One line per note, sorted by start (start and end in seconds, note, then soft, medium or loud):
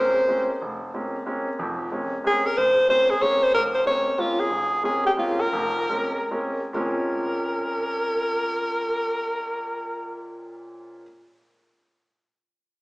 0.00 0.17 G#3 soft
0.00 0.17 A#3 soft
0.00 0.18 C4 soft
0.00 0.18 C#4 medium
0.00 0.50 C5 medium
0.28 0.49 G#3 soft
0.28 0.50 A#3 soft
0.28 0.50 C4 soft
0.28 0.50 C#4 medium
0.61 0.89 F1 medium
0.94 1.15 G#3 soft
0.94 1.15 A#3 soft
0.94 1.15 C4 soft
0.94 1.15 C#4 soft
1.26 1.47 G#3 soft
1.26 1.47 A#3 soft
1.26 1.47 C4 soft
1.26 1.48 C#4 medium
1.59 1.86 F1 medium
1.59 1.87 F2 medium
1.92 2.13 G#3 soft
1.92 2.13 A#3 soft
1.92 2.13 C4 soft
1.92 2.13 C#4 medium
2.24 2.45 G#3 soft
2.24 2.45 A#3 soft
2.24 2.45 C4 soft
2.24 2.45 C#4 medium
2.24 2.48 G#4 medium
2.46 2.59 A#4 medium
2.57 2.84 F1 medium
2.57 2.89 C5 loud
2.88 3.10 G#3 soft
2.88 3.10 A#3 soft
2.88 3.10 C4 soft
2.88 3.10 C#4 soft
2.88 3.12 C5 loud
3.10 3.24 G#4 medium
3.22 3.42 G#3 soft
3.22 3.43 A#3 soft
3.22 3.43 C4 soft
3.22 3.43 C#4 soft
3.22 3.45 C#5 loud
3.43 3.54 C5 medium
3.54 3.81 F1 medium
3.54 3.63 A#4 medium
3.75 3.86 C5 medium
3.86 4.07 G#3 soft
3.86 4.07 A#3 soft
3.86 4.07 C4 soft
3.86 4.08 C#4 soft
3.86 4.21 C#5 medium
4.18 4.40 G#3 soft
4.18 4.40 A#3 soft
4.18 4.40 C4 soft
4.18 4.40 C#4 soft
4.18 4.41 F4 medium
4.40 4.84 G#4 medium
4.50 4.79 F1 medium
4.83 5.05 G#3 soft
4.83 5.06 A#3 soft
4.83 5.06 C4 soft
4.83 5.06 C#4 medium
4.83 5.04 G#4 medium
5.06 5.12 G4 medium
5.17 5.40 G#3 soft
5.17 5.40 A#3 soft
5.17 5.40 C4 soft
5.17 5.40 C#4 medium
5.17 5.42 F4 medium
5.40 6.30 A#4 medium
5.53 5.84 F1 medium
5.53 5.84 F2 medium
5.90 6.16 G#3 soft
5.90 6.16 A#3 soft
5.90 6.16 C4 soft
5.90 6.16 C#4 soft
6.31 6.59 G#3 soft
6.31 6.59 A#3 soft
6.31 6.59 C4 soft
6.31 6.59 C#4 medium
6.73 11.02 A#2 medium
6.73 11.02 F3 medium
6.73 11.03 G#3 medium
6.73 11.03 C4 medium
6.73 11.03 C#4 medium
6.73 10.29 A#4 medium